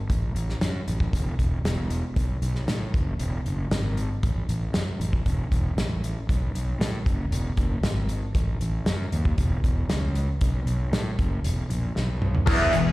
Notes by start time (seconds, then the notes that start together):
0.10 A1, kick, closed hi-hat
0.35 A1, closed hi-hat
0.49 snare
0.61 F#2, snare, closed hi-hat
0.88 A1, closed hi-hat
1.00 kick
1.13 E1, kick, closed hi-hat
1.39 E1, kick, closed hi-hat
1.64 E1, snare, closed hi-hat
1.90 closed hi-hat
2.16 B1, kick, closed hi-hat
2.42 B1, closed hi-hat
2.55 snare
2.68 A2, snare, closed hi-hat
2.94 F#1, kick, closed hi-hat
3.19 E1, closed hi-hat
3.46 F#1, closed hi-hat
3.71 G#1, snare, closed hi-hat
3.97 closed hi-hat
4.23 A1, kick, closed hi-hat
4.49 A1, closed hi-hat
4.74 F#2, snare, closed hi-hat
5.00 A1, closed hi-hat
5.13 kick
5.26 E1, kick, closed hi-hat
5.52 E1, kick, closed hi-hat
5.77 A1, snare, closed hi-hat
6.04 closed hi-hat
6.29 B1, kick, closed hi-hat
6.54 B1, closed hi-hat
6.79 A2, snare, closed hi-hat
7.06 F#1, kick, closed hi-hat
7.31 E1, closed hi-hat
7.57 F#1, kick, closed hi-hat
7.83 G#1, snare, closed hi-hat
8.09 closed hi-hat
8.35 A1, kick, closed hi-hat
8.61 A1, closed hi-hat
8.86 F#2, snare, closed hi-hat
9.12 D#2, closed hi-hat
9.25 kick
9.38 E1, kick, closed hi-hat
9.64 E1, kick, closed hi-hat
9.89 C#2, snare, closed hi-hat
10.15 closed hi-hat
10.41 B1, kick, closed hi-hat
10.66 B1, closed hi-hat
10.92 A2, snare, closed hi-hat
11.18 F#1, kick, closed hi-hat
11.44 E1, closed hi-hat
11.70 A#1, closed hi-hat
11.96 B1, snare
12.22 mid tom
12.35 floor tom
12.46 E1 E2 E3, kick, crash
12.72 E1 E2, closed hi-hat